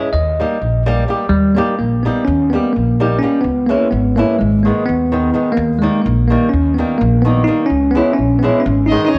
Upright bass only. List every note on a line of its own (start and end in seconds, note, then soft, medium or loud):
0.13 0.42 D#2 medium
0.61 1.03 A#1 medium
1.29 1.59 D#2 medium
1.79 2.08 A#1 medium
2.27 2.56 D#2 loud
2.76 3.17 A#1 medium
3.44 3.73 C#2 medium
3.92 4.21 G#1 medium
4.41 4.70 G#1 medium
4.89 5.30 D#2 medium
5.57 5.86 D#2 loud
6.06 6.34 A#1 medium
6.53 6.82 D#2 medium
7.01 7.42 A#1 loud
7.70 7.99 C#2 medium
8.18 8.47 A#1 medium
8.66 8.95 G#1 loud
9.14 9.19 D#2 medium